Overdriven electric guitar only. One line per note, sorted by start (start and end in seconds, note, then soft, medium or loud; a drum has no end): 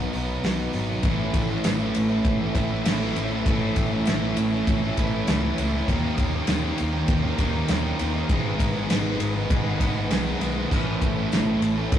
0.00 0.44 B2 medium
0.00 0.43 F#3 medium
0.00 0.15 B3 medium
0.00 0.14 D#4 loud
0.00 0.13 F#4 loud
0.15 0.44 B3 medium
0.15 0.44 D#4 medium
0.15 0.45 F#4 medium
0.44 1.03 F#3 medium
0.44 1.03 B3 medium
0.44 1.04 D#4 medium
0.44 1.04 F#4 medium
1.05 1.64 A2 medium
1.05 1.66 E3 loud
1.05 1.51 A3 loud
1.05 1.51 C#4 loud
1.05 1.50 E4 loud
1.50 1.66 A3 medium
1.50 1.67 C#4 medium
1.50 1.67 E4 medium
1.65 2.84 A2 medium
1.65 1.95 E3 medium
1.65 1.80 A3 medium
1.65 1.79 C#4 loud
1.65 1.79 E4 loud
1.79 1.95 A3 medium
1.79 1.96 C#4 medium
1.79 1.96 E4 medium
1.96 muted overdriven electric guitar stroke soft
2.09 2.40 A3 medium
2.09 2.41 C#4 medium
2.09 2.39 E4 medium
2.40 2.54 A3 medium
2.40 2.55 C#4 medium
2.40 2.55 E4 medium
2.55 2.84 E3 medium
2.55 2.84 A3 medium
2.55 2.86 C#4 medium
2.55 2.86 E4 medium
2.84 3.31 A2 medium
2.84 3.16 E3 medium
2.84 3.01 A3 loud
2.84 3.01 C#4 medium
2.84 2.99 E4 loud
3.01 3.17 A3 medium
3.01 3.18 C#4 medium
3.01 3.18 E4 medium
3.17 3.46 E3 medium
3.17 3.32 A3 medium
3.17 3.32 C#4 medium
3.17 3.30 E4 medium
3.31 3.47 A3 medium
3.31 3.48 C#4 medium
3.31 3.48 E4 medium
3.47 4.05 A2 medium
3.47 4.06 E3 medium
3.47 3.93 A3 loud
3.47 3.93 C#4 medium
3.47 3.91 E4 loud
3.92 4.06 A3 medium
3.92 4.07 C#4 medium
3.92 4.08 E4 medium
4.07 4.52 A2 medium
4.07 4.36 E3 loud
4.07 4.22 A3 medium
4.07 4.22 C#4 loud
4.07 4.20 E4 medium
4.22 4.36 A3 medium
4.22 4.37 C#4 medium
4.22 4.36 E4 medium
4.37 muted overdriven electric guitar stroke soft
4.51 4.82 A3 medium
4.51 4.81 C#4 medium
4.51 4.80 E4 medium
4.82 4.96 A3 medium
4.82 4.97 C#4 medium
4.82 4.97 E4 medium
4.97 5.26 E3 medium
4.97 5.27 A3 medium
4.97 5.27 C#4 medium
4.97 5.27 E4 medium
5.27 5.73 A2 loud
5.27 5.57 E3 medium
5.27 5.43 A3 medium
5.27 5.42 C#4 loud
5.27 5.41 E4 loud
5.42 5.58 A3 medium
5.42 5.59 C#4 medium
5.42 5.60 E4 medium
5.58 5.87 E3 medium
5.58 5.74 A3 medium
5.58 5.73 C#4 medium
5.58 5.72 E4 loud
5.73 5.88 A3 medium
5.73 5.87 C#4 medium
5.73 5.87 E4 medium
5.88 6.47 D#3 loud
5.88 6.34 A#3 loud
5.88 6.33 C#4 loud
5.88 6.32 G4 loud
6.34 6.48 A#3 medium
6.34 6.48 C#4 medium
6.34 6.49 G4 medium
6.48 6.76 D#3 medium
6.48 6.63 A#3 medium
6.48 6.62 C#4 loud
6.48 6.61 G4 medium
6.62 6.76 A#3 medium
6.62 6.77 C#4 medium
6.62 6.78 G4 medium
6.78 muted overdriven electric guitar stroke medium
6.93 7.24 A#3 medium
6.93 7.22 C#4 medium
6.93 7.21 G4 medium
7.22 7.38 A#3 medium
7.22 7.38 C#4 medium
7.22 7.39 G4 medium
7.38 7.67 D#3 medium
7.38 7.68 A#3 medium
7.38 7.69 C#4 medium
7.38 7.69 G4 medium
7.69 7.97 D#3 medium
7.69 7.84 A#3 loud
7.69 7.84 C#4 loud
7.69 7.82 G4 loud
7.83 7.98 A#3 medium
7.83 7.99 C#4 medium
7.83 7.99 G4 medium
7.98 8.28 D#3 medium
7.98 8.14 A#3 medium
7.98 8.13 C#4 medium
7.98 8.12 G4 medium
8.13 8.29 A#3 medium
8.13 8.28 C#4 medium
8.13 8.27 G4 medium
8.29 8.88 G#2 loud
8.29 8.88 D#3 loud
8.29 8.75 G#3 loud
8.29 8.74 B3 loud
8.29 8.74 D#4 loud
8.29 8.73 G#4 medium
8.74 8.89 G#3 medium
8.74 8.89 B3 medium
8.74 8.89 D#4 medium
8.74 8.90 G#4 medium
8.89 9.35 G#2 medium
8.89 9.36 D#3 medium
8.89 9.05 G#3 medium
8.89 9.05 B3 loud
8.89 9.04 D#4 loud
8.89 9.03 G#4 loud
9.05 9.18 G#3 medium
9.05 9.19 B3 medium
9.05 9.20 D#4 medium
9.05 9.20 G#4 medium
9.20 muted overdriven electric guitar stroke soft
9.35 9.66 G#3 medium
9.35 9.65 B3 medium
9.35 9.65 D#4 medium
9.35 9.64 G#4 medium
9.65 9.79 G#3 medium
9.65 9.80 B3 medium
9.65 9.80 D#4 medium
9.65 9.81 G#4 medium
9.80 10.10 G#3 medium
9.80 10.10 B3 medium
9.80 10.11 D#4 medium
9.80 10.11 G#4 medium
10.10 10.56 G#2 medium
10.10 10.56 D#3 medium
10.10 10.26 G#3 loud
10.10 10.25 B3 loud
10.10 10.25 D#4 loud
10.10 10.24 G#4 medium
10.25 10.40 G#3 medium
10.25 10.41 B3 medium
10.25 10.41 D#4 medium
10.25 10.42 G#4 medium
10.41 10.56 G#3 medium
10.41 10.56 B3 medium
10.41 10.55 D#4 medium
10.41 10.55 G#4 medium
10.56 10.70 G#3 medium
10.56 10.70 B3 medium
10.56 10.70 D#4 medium
10.56 10.70 G#4 medium
10.70 11.31 A2 medium
10.70 11.32 E3 loud
10.70 11.18 A3 loud
10.70 11.17 C#4 loud
10.70 11.16 A4 loud
11.17 11.32 A3 medium
11.17 11.32 C#4 medium
11.17 11.33 A4 medium
11.32 11.99 A2 medium
11.32 11.61 E3 medium
11.32 11.48 A3 loud
11.32 11.47 C#4 loud
11.32 11.46 A4 loud
11.46 11.61 A3 medium
11.46 11.61 C#4 medium
11.46 11.62 A4 medium
11.61 muted overdriven electric guitar stroke medium
11.76 11.99 A3 medium
11.76 11.99 C#4 medium
11.76 11.99 A4 medium